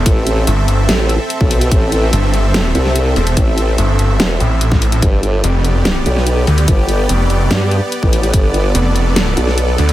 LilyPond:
<<
  \new Staff \with { instrumentName = "Supersaw synth" } { \time 4/4 \key a \minor \tempo 4 = 145 << { <c' e''>1~ | <c' e''>1~ | <c' e''>1 | <b d''>1~ |
<b d''>1~ | <b d''>1 | } \\ { a'1~ | a'1~ | a'1 | g'1~ |
g'1 | a'1 | } >> }
  \new Staff \with { instrumentName = "Wobble bass" } { \clef bass \time 4/4 \key a \minor a,,4 r4 a,,8. r8 b,,8. | a,,4 r4. c,4 r8 | a,,4 r4 e,,8 r4. | g,,4 r4. b,,4 r8 |
g,,4 r4 g,8. r8 a,,8. | g,,4 r4. b,,4 r8 | }
  \new Staff \with { instrumentName = "Detuned saw bass" } { \clef bass \time 4/4 \key a \minor r4 g,,8 g,,8 r2 | r4 g,,4. r4 e,,8 | r4 g,,8 g,,8 r8 a,,4. | r4 f,,4. r4 d,8 |
r4 f,,8 f,,8 r2 | r4 f,,4. r4 d,8 | }
  \new DrumStaff \with { instrumentName = "Drums" } \drummode { \time 4/4 <hh bd>8 hh8 hh8 hh8 <hh sn>8 hh8 hh16 bd16 hho16 hh16 | <hh bd>8 hh8 hh8 hh8 <hh sn>8 hh16 sn16 hh8 hho16 hh16 | <hh bd>8 hh8 hh8 hh8 <hh sn>8 hh8 hh16 <bd sn>16 hho16 hh16 | <hh bd>8 hh8 hh8 hh8 <hh sn>8 hh16 sn16 hh8 hho16 hh16 |
<hh bd>8 hh8 hh8 hh8 <hh sn>8 hh8 hh16 bd16 hho16 hh16 | <hh bd>8 hh8 hh8 hh8 <hh sn>8 hh16 sn16 hh8 hho16 hh16 | }
>>